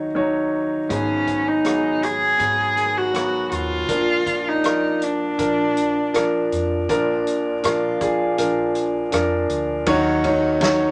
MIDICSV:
0, 0, Header, 1, 6, 480
1, 0, Start_track
1, 0, Tempo, 746269
1, 583, Time_signature, 4, 2, 24, 8
1, 7019, End_track
2, 0, Start_track
2, 0, Title_t, "Steel-string acoustic guitar"
2, 0, Program_c, 0, 25
2, 581, Note_on_c, 0, 68, 38
2, 1667, Note_off_c, 0, 68, 0
2, 1784, Note_on_c, 0, 70, 48
2, 2717, Note_off_c, 0, 70, 0
2, 4917, Note_on_c, 0, 65, 45
2, 5994, Note_off_c, 0, 65, 0
2, 6346, Note_on_c, 0, 66, 70
2, 7019, Note_off_c, 0, 66, 0
2, 7019, End_track
3, 0, Start_track
3, 0, Title_t, "Cello"
3, 0, Program_c, 1, 42
3, 586, Note_on_c, 1, 61, 84
3, 949, Note_on_c, 1, 63, 82
3, 959, Note_off_c, 1, 61, 0
3, 1314, Note_on_c, 1, 68, 104
3, 1324, Note_off_c, 1, 63, 0
3, 1915, Note_on_c, 1, 66, 89
3, 1925, Note_off_c, 1, 68, 0
3, 2279, Note_on_c, 1, 65, 98
3, 2289, Note_off_c, 1, 66, 0
3, 2886, Note_on_c, 1, 63, 82
3, 2896, Note_off_c, 1, 65, 0
3, 3239, Note_on_c, 1, 62, 81
3, 3248, Note_off_c, 1, 63, 0
3, 4198, Note_off_c, 1, 62, 0
3, 7019, End_track
4, 0, Start_track
4, 0, Title_t, "Grand piano"
4, 0, Program_c, 2, 0
4, 0, Control_c, 2, 64, 127
4, 0, Note_on_c, 2, 39, 51
4, 0, Note_on_c, 2, 51, 50
4, 0, Note_on_c, 2, 54, 65
4, 0, Note_on_c, 2, 63, 67
4, 0, Note_on_c, 2, 73, 76
4, 97, Note_off_c, 2, 54, 0
4, 97, Note_on_c, 2, 54, 78
4, 101, Note_off_c, 2, 63, 0
4, 101, Note_on_c, 2, 63, 71
4, 104, Note_off_c, 2, 73, 0
4, 104, Note_on_c, 2, 73, 88
4, 510, Note_off_c, 2, 54, 0
4, 512, Note_off_c, 2, 63, 0
4, 514, Note_off_c, 2, 73, 0
4, 558, Note_off_c, 2, 51, 0
4, 559, Note_off_c, 2, 39, 0
4, 575, Note_on_c, 2, 54, 60
4, 579, Note_on_c, 2, 32, 54
4, 579, Note_on_c, 2, 59, 60
4, 580, Note_on_c, 2, 44, 53
4, 580, Note_on_c, 2, 68, 66
4, 592, Control_c, 2, 64, 0
4, 717, Control_c, 2, 64, 127
4, 989, Note_off_c, 2, 54, 0
4, 991, Note_off_c, 2, 59, 0
4, 991, Note_off_c, 2, 68, 0
4, 1059, Note_on_c, 2, 54, 68
4, 1063, Note_on_c, 2, 59, 60
4, 1065, Note_on_c, 2, 68, 71
4, 1471, Note_off_c, 2, 54, 0
4, 1473, Note_off_c, 2, 59, 0
4, 1474, Note_off_c, 2, 68, 0
4, 1536, Note_on_c, 2, 54, 62
4, 1539, Note_on_c, 2, 59, 57
4, 1542, Note_on_c, 2, 68, 69
4, 1949, Note_off_c, 2, 54, 0
4, 1951, Note_off_c, 2, 59, 0
4, 1952, Note_off_c, 2, 68, 0
4, 2017, Note_on_c, 2, 54, 66
4, 2024, Note_on_c, 2, 59, 60
4, 2027, Note_on_c, 2, 66, 73
4, 2430, Note_off_c, 2, 54, 0
4, 2433, Note_off_c, 2, 59, 0
4, 2435, Note_off_c, 2, 66, 0
4, 2473, Note_off_c, 2, 32, 0
4, 2473, Note_off_c, 2, 44, 0
4, 2497, Note_on_c, 2, 53, 62
4, 2500, Note_on_c, 2, 46, 58
4, 2501, Note_on_c, 2, 62, 56
4, 2502, Note_on_c, 2, 34, 55
4, 2504, Note_on_c, 2, 70, 68
4, 2510, Control_c, 2, 64, 0
4, 2629, Control_c, 2, 64, 127
4, 2910, Note_off_c, 2, 53, 0
4, 2912, Note_off_c, 2, 62, 0
4, 2914, Note_off_c, 2, 70, 0
4, 2981, Note_on_c, 2, 53, 63
4, 2984, Note_on_c, 2, 74, 57
4, 2987, Note_on_c, 2, 70, 70
4, 3394, Note_off_c, 2, 53, 0
4, 3396, Note_off_c, 2, 74, 0
4, 3397, Note_off_c, 2, 70, 0
4, 3460, Note_on_c, 2, 53, 61
4, 3466, Note_on_c, 2, 62, 55
4, 3469, Note_on_c, 2, 70, 69
4, 3876, Note_off_c, 2, 53, 0
4, 3879, Note_off_c, 2, 62, 0
4, 3881, Note_off_c, 2, 70, 0
4, 3946, Note_on_c, 2, 53, 80
4, 3949, Note_on_c, 2, 62, 74
4, 3951, Note_on_c, 2, 70, 90
4, 4361, Note_off_c, 2, 53, 0
4, 4363, Note_off_c, 2, 62, 0
4, 4363, Note_off_c, 2, 70, 0
4, 4405, Note_off_c, 2, 46, 0
4, 4406, Note_off_c, 2, 34, 0
4, 4432, Note_on_c, 2, 53, 85
4, 4434, Note_on_c, 2, 46, 63
4, 4435, Note_on_c, 2, 34, 61
4, 4435, Note_on_c, 2, 62, 83
4, 4437, Note_on_c, 2, 70, 97
4, 4440, Control_c, 2, 64, 0
4, 4554, Control_c, 2, 64, 127
4, 4842, Note_off_c, 2, 53, 0
4, 4843, Note_off_c, 2, 62, 0
4, 4845, Note_off_c, 2, 70, 0
4, 4910, Note_on_c, 2, 53, 76
4, 4912, Note_on_c, 2, 62, 67
4, 4916, Note_on_c, 2, 70, 81
4, 5114, Note_off_c, 2, 53, 0
4, 5115, Note_off_c, 2, 62, 0
4, 5118, Note_off_c, 2, 70, 0
4, 5149, Note_on_c, 2, 53, 69
4, 5152, Note_on_c, 2, 62, 69
4, 5154, Note_on_c, 2, 68, 84
4, 5353, Note_off_c, 2, 53, 0
4, 5354, Note_off_c, 2, 62, 0
4, 5356, Note_off_c, 2, 68, 0
4, 5387, Note_on_c, 2, 53, 74
4, 5391, Note_on_c, 2, 62, 65
4, 5394, Note_on_c, 2, 70, 84
4, 5796, Note_off_c, 2, 53, 0
4, 5797, Note_off_c, 2, 62, 0
4, 5799, Note_off_c, 2, 70, 0
4, 5865, Note_on_c, 2, 53, 80
4, 5868, Note_on_c, 2, 62, 74
4, 5872, Note_on_c, 2, 70, 88
4, 6275, Note_off_c, 2, 53, 0
4, 6276, Note_off_c, 2, 62, 0
4, 6278, Note_off_c, 2, 70, 0
4, 6319, Note_off_c, 2, 46, 0
4, 6320, Note_off_c, 2, 34, 0
4, 6347, Note_on_c, 2, 54, 105
4, 6350, Note_on_c, 2, 63, 90
4, 6351, Note_on_c, 2, 39, 72
4, 6351, Note_on_c, 2, 73, 110
4, 6352, Control_c, 2, 64, 0
4, 6352, Note_on_c, 2, 51, 68
4, 6454, Control_c, 2, 64, 127
4, 6551, Note_off_c, 2, 54, 0
4, 6552, Note_off_c, 2, 63, 0
4, 6552, Note_off_c, 2, 73, 0
4, 6593, Note_on_c, 2, 54, 75
4, 6595, Note_on_c, 2, 63, 68
4, 6598, Note_on_c, 2, 73, 85
4, 6793, Note_off_c, 2, 54, 0
4, 6794, Note_off_c, 2, 63, 0
4, 6796, Note_off_c, 2, 73, 0
4, 6822, Note_on_c, 2, 54, 82
4, 6823, Note_on_c, 2, 63, 77
4, 6828, Note_on_c, 2, 73, 90
4, 7019, Note_off_c, 2, 39, 0
4, 7019, Note_off_c, 2, 51, 0
4, 7019, Note_off_c, 2, 54, 0
4, 7019, Note_off_c, 2, 63, 0
4, 7019, Note_off_c, 2, 73, 0
4, 7019, End_track
5, 0, Start_track
5, 0, Title_t, "Fingered electric bass"
5, 0, Program_c, 3, 33
5, 579, Note_on_c, 3, 32, 77
5, 1514, Note_off_c, 3, 32, 0
5, 1541, Note_on_c, 3, 32, 86
5, 2235, Note_off_c, 3, 32, 0
5, 2261, Note_on_c, 3, 39, 75
5, 2500, Note_off_c, 3, 39, 0
5, 2500, Note_on_c, 3, 34, 82
5, 3438, Note_off_c, 3, 34, 0
5, 3467, Note_on_c, 3, 34, 87
5, 4166, Note_off_c, 3, 34, 0
5, 4194, Note_on_c, 3, 41, 80
5, 4410, Note_off_c, 3, 41, 0
5, 4434, Note_on_c, 3, 34, 84
5, 4886, Note_off_c, 3, 34, 0
5, 4915, Note_on_c, 3, 46, 82
5, 5364, Note_off_c, 3, 46, 0
5, 5393, Note_on_c, 3, 34, 95
5, 5842, Note_off_c, 3, 34, 0
5, 5870, Note_on_c, 3, 41, 86
5, 6084, Note_off_c, 3, 41, 0
5, 6106, Note_on_c, 3, 38, 78
5, 6322, Note_off_c, 3, 38, 0
5, 6348, Note_on_c, 3, 39, 82
5, 7019, Note_off_c, 3, 39, 0
5, 7019, End_track
6, 0, Start_track
6, 0, Title_t, "Drums"
6, 580, Note_on_c, 9, 36, 76
6, 581, Note_on_c, 9, 42, 55
6, 644, Note_off_c, 9, 36, 0
6, 645, Note_off_c, 9, 42, 0
6, 821, Note_on_c, 9, 36, 55
6, 821, Note_on_c, 9, 42, 43
6, 885, Note_off_c, 9, 36, 0
6, 886, Note_off_c, 9, 42, 0
6, 1059, Note_on_c, 9, 42, 60
6, 1069, Note_on_c, 9, 37, 79
6, 1123, Note_off_c, 9, 42, 0
6, 1134, Note_off_c, 9, 37, 0
6, 1306, Note_on_c, 9, 42, 45
6, 1370, Note_off_c, 9, 42, 0
6, 1541, Note_on_c, 9, 36, 63
6, 1541, Note_on_c, 9, 42, 58
6, 1605, Note_off_c, 9, 36, 0
6, 1606, Note_off_c, 9, 42, 0
6, 1782, Note_on_c, 9, 42, 45
6, 1846, Note_off_c, 9, 42, 0
6, 2022, Note_on_c, 9, 42, 59
6, 2033, Note_on_c, 9, 37, 78
6, 2086, Note_off_c, 9, 42, 0
6, 2097, Note_off_c, 9, 37, 0
6, 2261, Note_on_c, 9, 42, 47
6, 2326, Note_off_c, 9, 42, 0
6, 2501, Note_on_c, 9, 36, 77
6, 2501, Note_on_c, 9, 42, 62
6, 2565, Note_off_c, 9, 36, 0
6, 2565, Note_off_c, 9, 42, 0
6, 2743, Note_on_c, 9, 36, 58
6, 2744, Note_on_c, 9, 42, 47
6, 2807, Note_off_c, 9, 36, 0
6, 2809, Note_off_c, 9, 42, 0
6, 2984, Note_on_c, 9, 42, 66
6, 2995, Note_on_c, 9, 37, 82
6, 3048, Note_off_c, 9, 42, 0
6, 3059, Note_off_c, 9, 37, 0
6, 3226, Note_on_c, 9, 42, 51
6, 3291, Note_off_c, 9, 42, 0
6, 3465, Note_on_c, 9, 42, 61
6, 3466, Note_on_c, 9, 36, 65
6, 3530, Note_off_c, 9, 36, 0
6, 3530, Note_off_c, 9, 42, 0
6, 3710, Note_on_c, 9, 42, 48
6, 3774, Note_off_c, 9, 42, 0
6, 3950, Note_on_c, 9, 42, 62
6, 3961, Note_on_c, 9, 37, 84
6, 4015, Note_off_c, 9, 42, 0
6, 4026, Note_off_c, 9, 37, 0
6, 4195, Note_on_c, 9, 42, 46
6, 4259, Note_off_c, 9, 42, 0
6, 4433, Note_on_c, 9, 36, 79
6, 4435, Note_on_c, 9, 42, 61
6, 4497, Note_off_c, 9, 36, 0
6, 4499, Note_off_c, 9, 42, 0
6, 4675, Note_on_c, 9, 42, 45
6, 4739, Note_off_c, 9, 42, 0
6, 4911, Note_on_c, 9, 42, 65
6, 4922, Note_on_c, 9, 37, 86
6, 4975, Note_off_c, 9, 42, 0
6, 4986, Note_off_c, 9, 37, 0
6, 5151, Note_on_c, 9, 42, 50
6, 5152, Note_on_c, 9, 36, 66
6, 5216, Note_off_c, 9, 42, 0
6, 5217, Note_off_c, 9, 36, 0
6, 5391, Note_on_c, 9, 42, 65
6, 5455, Note_off_c, 9, 42, 0
6, 5627, Note_on_c, 9, 42, 47
6, 5692, Note_off_c, 9, 42, 0
6, 5866, Note_on_c, 9, 42, 69
6, 5877, Note_on_c, 9, 37, 80
6, 5931, Note_off_c, 9, 42, 0
6, 5942, Note_off_c, 9, 37, 0
6, 6107, Note_on_c, 9, 42, 52
6, 6172, Note_off_c, 9, 42, 0
6, 6345, Note_on_c, 9, 51, 69
6, 6346, Note_on_c, 9, 36, 85
6, 6409, Note_off_c, 9, 51, 0
6, 6410, Note_off_c, 9, 36, 0
6, 6586, Note_on_c, 9, 36, 64
6, 6587, Note_on_c, 9, 51, 52
6, 6651, Note_off_c, 9, 36, 0
6, 6651, Note_off_c, 9, 51, 0
6, 6824, Note_on_c, 9, 51, 71
6, 6835, Note_on_c, 9, 38, 92
6, 6888, Note_off_c, 9, 51, 0
6, 6899, Note_off_c, 9, 38, 0
6, 7019, End_track
0, 0, End_of_file